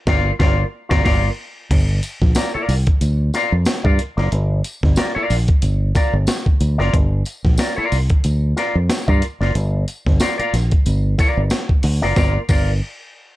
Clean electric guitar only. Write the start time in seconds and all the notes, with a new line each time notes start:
0.07 F4 A#4 D5
0.39 F4 A#4 D5
0.89 F4 A#4 D5
1.04 F4 A#4 D5
2.35 F4 A#4 D5
2.54 F4 A#4 D5
3.34 F4 A#4 D5
3.84 F4 A#4 D5
4.17 F4 A#4 D5
4.97 F4 A#4 D5
5.15 F4 A#4 D5
5.95 F4 A#4 D5
6.78 F4 A#4 D5
7.58 F4 A#4 D5
7.76 F4 A#4 D5
8.56 F4 A#4 D5
9.08 F4 A#4 D5
9.41 F4 A#4 D5
10.20 F4 A#4 D5
10.38 F4 A#4 D5
11.18 F4 A#4 D5
12.02 F4 A#4 D5
12.17 F4 A#4 D5
12.50 F4 A#4 D5